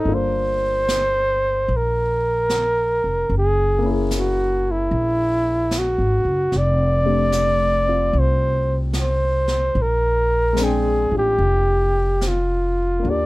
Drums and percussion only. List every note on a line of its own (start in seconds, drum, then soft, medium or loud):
0.06 brush sweep soft
0.88 snare soft
0.88 hi-hat pedal medium
1.69 brush sweep soft
2.49 snare soft
2.49 hi-hat pedal soft
3.30 brush sweep soft
4.11 snare soft
4.11 hi-hat pedal soft
4.91 brush sweep soft
5.71 snare soft
5.71 hi-hat pedal soft
6.52 brush sweep soft
6.52 snare soft
7.32 snare soft
7.32 hi-hat pedal medium
8.12 brush sweep soft
8.93 snare soft
8.93 hi-hat pedal soft
9.48 snare soft
9.74 brush sweep soft
10.57 snare soft
10.57 hi-hat pedal soft
11.39 brush sweep soft
12.21 snare soft
12.21 hi-hat pedal soft
13.04 brush sweep soft